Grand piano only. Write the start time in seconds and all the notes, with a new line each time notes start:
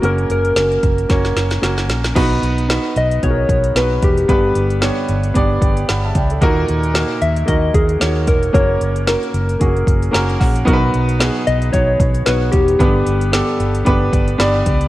0.02 C#3 A#3 C#4 F#4 A#4
0.56 A#3 C#4 F#4 A#4
1.09 A#3 C#4 F#4 C#5
1.62 A#3 C#4 F#4 A#4
2.15 B3 D#4 F#4 B4
2.68 B3 D#4 F#4 B4
3.22 B3 D#4 F#4 G#4
3.30 A#4
3.75 B3 D#4 F#4 B4
4.28 G2 D3 B3 D4 G4 B4
4.81 B3 D4 G4 C#5
5.34 B3 D4 G4 D5
5.61 G5
5.89 F#5 B5
6.04 E5 A5
6.16 D5 G5
6.31 A4 D5
6.41 A#2 A#3 D#4 F#4 A#4
6.93 A#3 D#4 F#4 A#4
7.45 A#3 D#4 F#4 A#4
7.99 A#3 D#4 F#4 C#5
8.53 C#3 A#3 C#4 F#4 A#4
9.06 A#3 C#4 F#4 A#4
9.59 A#3 C#4 F#4 G#4
10.11 A#3 C#4 F#4 A#4 A#5
10.40 F#5
10.65 B2 F#3 B3 D#4 F#4 A#4
10.73 B4
11.19 B3 D#4 F#4 G#4
11.72 B3 D#4 F#4 C#5
12.26 B3 D#4 F#4 C#5
12.79 G2 D3 B3 D4 G4 B4
13.32 B3 D4 G4 A4
13.85 B3 D4 G4 B4
14.12 D5
14.38 B3 D4 G4 D5 B5